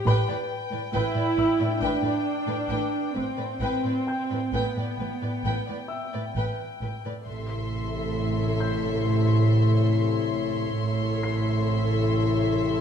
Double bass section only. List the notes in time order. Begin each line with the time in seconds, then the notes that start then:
0.06 A1
0.94 A1
1.37 A1
1.82 A1
2.69 A1
3.15 A1
3.60 A1
4.52 A1
4.98 A1
5.44 A1
6.35 A1
6.81 A1
7.26 A1
10.78 A1